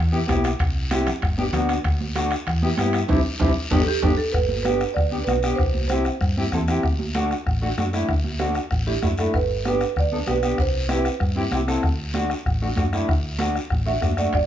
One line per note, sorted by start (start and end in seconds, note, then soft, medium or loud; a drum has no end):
0.00 0.22 E2 loud
0.12 0.18 B3 medium
0.12 0.18 E4 medium
0.12 0.18 G4 medium
0.27 0.54 B1 medium
0.27 0.50 B3 medium
0.27 0.50 E4 medium
0.27 0.50 G4 medium
0.27 bombo low medium
0.27 bombo rim medium
0.27 high conga medium
0.27 high timbale medium
0.27 low timbale medium
0.27 short guiro medium
0.44 bombo rim medium
0.44 high timbale medium
0.44 short guiro medium
0.59 1.10 C2 medium
0.59 bombo low medium
0.59 bombo rim medium
0.59 high conga soft
0.59 high timbale medium
0.59 long guiro medium
0.91 1.07 C4 medium
0.91 1.08 E4 medium
0.91 1.08 G4 medium
0.91 bombo rim medium
0.91 high conga medium
0.91 high timbale medium
0.91 short guiro medium
1.07 bombo rim medium
1.07 low conga medium
1.07 high timbale medium
1.07 short guiro medium
1.22 1.47 G1 medium
1.22 bombo low medium
1.22 bombo rim medium
1.22 high conga soft
1.22 high timbale medium
1.22 long guiro medium
1.38 1.43 B3 medium
1.38 1.43 D4 medium
1.38 1.44 G4 medium
1.38 high conga medium
1.52 1.78 D2 medium
1.52 1.75 B3 medium
1.52 1.75 D4 medium
1.52 1.75 F#4 medium
1.52 bombo rim medium
1.52 high conga medium
1.52 low conga medium
1.52 high timbale medium
1.52 short guiro medium
1.69 bombo rim medium
1.69 high timbale medium
1.69 short guiro medium
1.84 2.34 D2 loud
1.84 bombo low medium
1.84 bombo rim medium
1.84 high conga soft
1.84 high timbale medium
1.84 long guiro medium
2.01 high conga medium
2.15 2.32 A3 medium
2.15 2.32 D4 medium
2.15 2.32 F#4 medium
2.15 bombo rim medium
2.15 high conga medium
2.15 high timbale medium
2.15 short guiro medium
2.31 bombo rim medium
2.31 high timbale medium
2.31 short guiro medium
2.46 2.72 E2 loud
2.46 bombo low medium
2.46 bombo rim medium
2.46 high conga soft
2.46 high timbale medium
2.46 long guiro medium
2.62 2.68 B3 medium
2.62 2.68 E4 medium
2.62 2.68 G4 medium
2.62 high conga medium
2.77 3.03 G2 medium
2.77 3.00 B3 medium
2.77 3.00 E4 medium
2.77 3.00 G4 medium
2.77 bombo rim medium
2.77 high conga medium
2.77 high timbale medium
2.77 low timbale medium
2.77 short guiro medium
2.93 bombo rim medium
2.93 high timbale medium
2.93 short guiro medium
3.08 3.21 C2 loud
3.08 3.19 G3 medium
3.08 3.19 C4 loud
3.08 3.19 E4 medium
3.08 bombo low medium
3.08 low conga loud
3.08 high timbale loud
3.08 long guiro medium
3.40 3.52 C2 medium
3.40 3.51 G3 medium
3.40 3.51 C4 medium
3.40 3.51 E4 loud
3.40 bombo low medium
3.40 low conga medium
3.40 high timbale medium
3.40 long guiro loud
3.71 3.83 G1 medium
3.71 3.82 B3 loud
3.71 3.82 D4 medium
3.71 3.81 G4 loud
3.71 bombo low loud
3.71 low conga loud
3.71 high timbale loud
3.71 long guiro loud
3.80 3.87 A4 medium
3.88 4.17 G4 medium
4.02 4.14 G1 medium
4.02 4.13 B3 medium
4.02 4.13 D4 medium
4.02 4.13 G4 medium
4.02 bombo low medium
4.02 low conga medium
4.02 high timbale medium
4.02 long guiro medium
4.18 4.25 A4 medium
4.32 4.84 G1 medium
4.32 4.62 B4 medium
4.32 bombo low medium
4.32 bombo rim medium
4.32 high conga soft
4.32 long guiro medium
4.49 high conga medium
4.63 4.82 B3 medium
4.63 4.82 D4 medium
4.63 4.82 G4 medium
4.63 4.93 B4 medium
4.63 bombo rim medium
4.63 high conga medium
4.63 short guiro medium
4.80 bombo rim medium
4.80 short guiro medium
4.94 5.21 D2 medium
4.94 5.24 D5 medium
4.94 bombo low medium
4.94 bombo rim medium
4.94 high conga soft
4.94 long guiro medium
5.11 5.17 B3 medium
5.11 5.17 D4 medium
5.11 5.17 G4 medium
5.24 5.52 B1 medium
5.24 5.33 B3 medium
5.24 5.33 D4 medium
5.24 5.55 B4 medium
5.24 high conga medium
5.24 short guiro medium
5.28 5.33 F#4 medium
5.28 bombo rim medium
5.43 5.59 B3 medium
5.43 5.59 D4 medium
5.43 5.59 G4 medium
5.43 bombo rim medium
5.43 short guiro medium
5.56 6.08 C2 loud
5.56 5.86 C5 medium
5.56 bombo low medium
5.56 bombo rim medium
5.56 high conga soft
5.56 long guiro medium
5.74 high conga medium
5.88 6.06 C4 medium
5.88 6.06 E4 medium
5.88 6.07 G4 medium
5.88 6.47 C5 medium
5.88 bombo rim medium
5.88 high conga medium
5.88 short guiro medium
6.05 bombo rim medium
6.05 short guiro medium
6.21 6.46 G2 medium
6.21 bombo low medium
6.21 bombo rim medium
6.21 high conga soft
6.21 long guiro medium
6.37 6.42 C4 medium
6.37 6.43 E4 medium
6.37 6.43 G4 medium
6.37 high conga medium
6.52 6.77 E2 medium
6.52 6.58 C4 medium
6.52 6.59 E4 medium
6.52 6.59 A4 medium
6.52 bombo low medium
6.52 bombo rim medium
6.52 high conga medium
6.52 short guiro medium
6.68 6.84 C4 medium
6.68 6.84 E4 medium
6.68 6.84 G4 medium
6.68 bombo rim medium
6.68 short guiro medium
6.83 7.34 D2 loud
6.83 bombo low medium
6.83 bombo rim medium
6.83 high conga soft
6.83 long guiro medium
6.99 high conga medium
7.15 7.31 A3 medium
7.15 7.32 D4 medium
7.15 7.32 F#4 medium
7.15 bombo rim medium
7.15 high conga medium
7.15 short guiro medium
7.31 bombo rim medium
7.31 short guiro medium
7.46 7.71 A1 medium
7.46 bombo low medium
7.46 bombo rim medium
7.46 high conga soft
7.46 long guiro medium
7.62 7.67 A3 medium
7.62 7.67 D4 medium
7.62 7.68 F#4 medium
7.78 8.02 F#2 medium
7.78 7.83 A3 medium
7.78 7.83 D4 medium
7.78 7.83 F#4 medium
7.78 bombo rim medium
7.78 high conga medium
7.78 short guiro medium
7.93 8.09 A3 medium
7.93 8.09 D4 medium
7.93 8.10 E4 medium
7.93 bombo rim medium
7.93 short guiro medium
8.08 8.58 D2 loud
8.08 bombo low medium
8.08 bombo rim medium
8.08 high conga soft
8.08 long guiro medium
8.24 high conga medium
8.39 8.56 A3 medium
8.39 8.56 D4 medium
8.39 8.57 F#4 medium
8.39 bombo rim medium
8.39 high conga medium
8.39 short guiro medium
8.55 bombo rim medium
8.55 short guiro medium
8.71 8.96 A1 medium
8.71 bombo low medium
8.71 bombo rim medium
8.71 high conga soft
8.71 long guiro medium
8.87 8.92 A3 medium
8.87 8.92 D4 medium
8.87 8.92 E4 medium
8.87 9.16 G4 medium
9.02 9.27 F#2 medium
9.02 9.08 A3 medium
9.02 9.08 D4 medium
9.02 9.08 E4 medium
9.02 bombo low medium
9.02 bombo rim medium
9.02 high conga medium
9.02 short guiro medium
9.18 9.34 A3 medium
9.18 9.34 D4 medium
9.18 9.34 E4 medium
9.18 9.26 A4 medium
9.18 bombo rim medium
9.18 short guiro medium
9.34 9.84 G1 loud
9.34 9.63 B4 medium
9.34 bombo low medium
9.34 bombo rim medium
9.34 high conga soft
9.34 long guiro medium
9.65 9.82 B3 medium
9.65 9.82 D4 medium
9.65 9.82 G4 medium
9.65 9.96 B4 medium
9.65 bombo rim medium
9.65 high conga medium
9.65 short guiro medium
9.81 bombo rim medium
9.81 short guiro medium
9.96 10.21 D2 medium
9.96 10.27 D5 medium
9.96 bombo low medium
9.96 bombo rim medium
9.96 high conga soft
9.96 long guiro medium
10.12 10.17 B3 medium
10.12 10.17 D4 medium
10.12 10.18 A4 medium
10.26 10.52 B1 medium
10.26 10.32 B3 medium
10.26 10.32 D4 medium
10.26 10.33 G4 medium
10.26 10.57 B4 medium
10.26 bombo rim medium
10.26 high conga medium
10.26 short guiro medium
10.43 10.58 B3 medium
10.43 10.59 D4 medium
10.43 10.59 G4 medium
10.43 bombo rim medium
10.43 short guiro medium
10.58 11.08 C2 loud
10.58 10.89 C5 medium
10.58 bombo low medium
10.58 bombo rim medium
10.58 high conga soft
10.58 long guiro medium
10.88 11.05 C4 medium
10.88 11.06 E4 medium
10.88 11.06 G4 medium
10.88 11.49 B4 medium
10.88 bombo rim medium
10.88 high conga medium
10.88 short guiro medium
11.05 bombo rim medium
11.05 short guiro medium
11.20 11.46 G2 medium
11.20 bombo low medium
11.20 bombo rim medium
11.20 high conga soft
11.20 long guiro medium
11.36 11.42 C4 medium
11.36 11.42 E4 medium
11.36 11.42 G4 medium
11.36 high conga medium
11.51 11.77 C2 medium
11.51 11.58 C4 medium
11.51 11.58 E4 medium
11.51 11.58 G4 medium
11.51 bombo rim medium
11.51 high conga medium
11.51 short guiro medium
11.68 11.83 C4 medium
11.68 11.83 E4 medium
11.68 11.84 A4 medium
11.68 bombo rim medium
11.68 short guiro medium
11.83 12.33 D2 loud
11.83 bombo low medium
11.83 bombo rim medium
11.83 high conga soft
11.83 long guiro medium
12.14 12.31 A3 medium
12.14 12.31 D4 medium
12.14 12.31 F#4 medium
12.14 bombo rim medium
12.14 high conga medium
12.14 short guiro medium
12.30 bombo rim medium
12.30 short guiro medium
12.45 12.71 A1 medium
12.45 bombo low medium
12.45 bombo rim medium
12.45 high conga soft
12.45 long guiro medium
12.62 12.67 A3 medium
12.62 12.67 D4 medium
12.62 12.67 F#4 medium
12.76 13.02 F#2 medium
12.76 12.82 A3 medium
12.76 12.83 D4 medium
12.76 12.83 F#4 medium
12.76 bombo low medium
12.76 bombo rim medium
12.76 high conga medium
12.76 short guiro medium
12.93 13.09 A3 medium
12.93 13.09 D4 medium
12.93 13.09 E4 medium
12.93 bombo rim medium
12.93 short guiro medium
13.08 13.58 D2 loud
13.08 bombo low medium
13.08 bombo rim medium
13.08 high conga soft
13.08 long guiro medium
13.39 13.56 A3 medium
13.39 13.56 D4 medium
13.39 13.56 F#4 medium
13.39 bombo rim medium
13.39 high conga loud
13.39 short guiro medium
13.56 bombo rim medium
13.56 short guiro medium
13.70 13.96 A1 medium
13.70 bombo low medium
13.70 bombo rim medium
13.70 high conga soft
13.70 long guiro medium
13.86 13.92 A3 medium
13.86 13.92 D4 medium
13.86 13.92 F#4 medium
13.86 14.15 E5 loud
14.01 14.27 F#2 medium
14.01 14.07 A3 medium
14.01 14.07 D4 medium
14.01 14.07 F#4 medium
14.01 bombo low medium
14.01 bombo rim medium
14.01 high conga medium
14.01 short guiro medium
14.17 14.33 A3 medium
14.17 14.34 D4 medium
14.17 14.34 F#4 medium
14.17 14.25 D5 medium
14.17 bombo rim medium
14.17 short guiro medium
14.33 14.46 G1 loud
14.33 14.46 D5 loud
14.33 bombo low medium
14.33 bombo rim medium
14.33 high conga soft
14.33 high timbale medium
14.33 long guiro medium